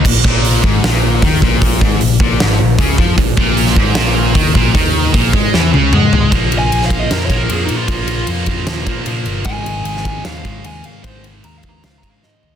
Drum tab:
CC |x---------------|----------------|----------------|----------------|
RD |----------------|----------------|----------------|----------------|
HH |----o---o---o---|o---o---o---o---|o---o---o---o---|o---o-----------|
SD |--------o-------|--------o-------|-----o--o-------|--------o-------|
T1 |----------------|----------------|----------------|----------o-----|
T2 |----------------|----------------|----------------|------------o---|
FT |----------------|----------------|----------------|--------------o-|
BD |o-o---o-----o-o-|o-o---o-----o-o-|o-o---o-----o-o-|o---o-o---------|

CC |----------------|----------------|----------------|----------------|
RD |x-x-x-x-x-x-x-x-|x-x-x-x-x-x-x-x-|x-x-x-x-x-x-x-x-|x-x-x-x-x-x-----|
HH |----------------|----------------|----------------|----------------|
SD |-----o--o-------|--------o-------|-----o--o-------|--------o---o---|
T1 |----------------|----------------|----------------|----------------|
T2 |----------------|----------------|----------------|----------------|
FT |----------------|----------------|----------------|--------------o-|
BD |o-----o---o-----|o-----o---o-----|o-----o---o-----|o-----o---o-----|